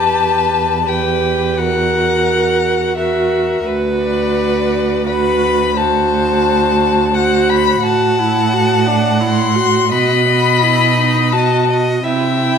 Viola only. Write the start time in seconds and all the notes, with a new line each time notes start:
Already playing: G4
0.87 G4
1.58 F#4
2.97 F#4
3.66 F#4
5.08 F#4
5.78 F#4
7.15 F#4
7.83 F#4
8.19 E4
8.53 F#4
8.87 D4
9.21 E4
9.56 F#4
9.91 F#4
10.61 E4
10.97 D#4
11.33 F#4
12.04 E4
12.39 E4